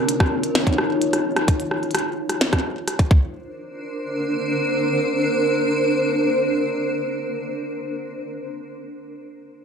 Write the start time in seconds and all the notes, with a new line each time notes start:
Already playing: D#4 F4 C#5
0.09 closed hi-hat
0.20 kick, cross-stick
0.43 closed hi-hat
0.55 cross-stick, snare, closed hi-hat
0.67 kick, closed hi-hat
0.78 cross-stick
1.02 closed hi-hat
1.13 cross-stick, closed hi-hat
1.36 cross-stick, closed hi-hat
1.48 kick, closed hi-hat
1.60 closed hi-hat
1.71 cross-stick
1.83 closed hi-hat
1.91 cross-stick, closed hi-hat
1.95 closed hi-hat
1.98 closed hi-hat
2.29 cross-stick, closed hi-hat
2.41 snare, closed hi-hat
2.53 kick, cross-stick, closed hi-hat
2.88 cross-stick, closed hi-hat
2.99 kick, closed hi-hat
3.11 D4 A#4 C5, kick